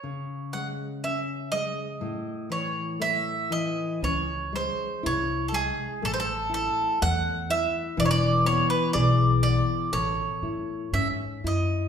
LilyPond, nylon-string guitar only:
\new Staff \with { instrumentName = "Nylon-string guitar" } { \time 2/4 \key cis \minor \tempo 4 = 61 cis8 gis8 cis'8 gis8 | a,8 e8 a8 e8 | cis'8 gis8 e'8 gis8 | a8 e'8 a8 e'8 |
e8 b8 gis'8 b8 | a'8 e'8 cis'8 e'8 | }